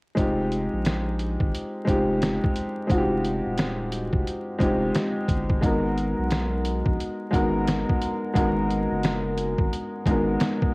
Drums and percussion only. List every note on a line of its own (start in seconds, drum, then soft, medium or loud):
0.17 kick loud
0.17 closed hi-hat medium
0.52 closed hi-hat medium
0.85 snare loud
0.85 closed hi-hat medium
1.19 closed hi-hat medium
1.40 kick medium
1.55 closed hi-hat medium
1.87 kick loud
1.87 closed hi-hat medium
2.22 snare loud
2.22 closed hi-hat loud
2.44 kick loud
2.56 closed hi-hat medium
2.90 kick loud
2.90 closed hi-hat medium
3.25 closed hi-hat medium
3.58 snare loud
3.58 closed hi-hat medium
3.92 closed hi-hat medium
4.13 kick medium
4.27 closed hi-hat medium
4.60 kick medium
4.60 closed hi-hat medium
4.95 snare loud
4.95 closed hi-hat loud
5.28 kick medium
5.28 closed hi-hat medium
5.50 kick medium
5.63 kick loud
5.63 closed hi-hat medium
5.97 closed hi-hat medium
6.30 snare loud
6.30 closed hi-hat medium
6.65 closed hi-hat medium
6.86 kick medium
7.00 closed hi-hat medium
7.33 kick loud
7.33 closed hi-hat medium
7.68 snare loud
7.68 closed hi-hat loud
7.89 kick medium
8.02 closed hi-hat medium
8.35 kick loud
8.35 closed hi-hat medium
8.70 closed hi-hat medium
9.03 snare loud
9.03 closed hi-hat medium
9.38 closed hi-hat medium
9.58 kick medium
9.73 closed hi-hat medium
10.06 kick loud
10.06 closed hi-hat medium
10.40 snare loud
10.40 closed hi-hat loud
10.62 kick loud